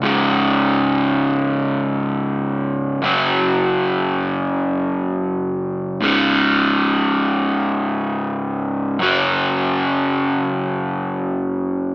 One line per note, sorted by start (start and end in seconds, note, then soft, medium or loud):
0.02 3.02 C#2 medium
0.02 3.01 G#2 medium
0.02 3.04 C#3 medium
3.02 5.99 F#2 medium
3.02 6.02 C#3 medium
3.02 6.01 F#3 medium
6.01 8.99 C#2 medium
6.01 8.99 G#2 medium
6.01 9.02 C#3 medium
8.99 11.95 F#2 medium
8.99 11.95 C#3 medium
8.99 11.95 F#3 medium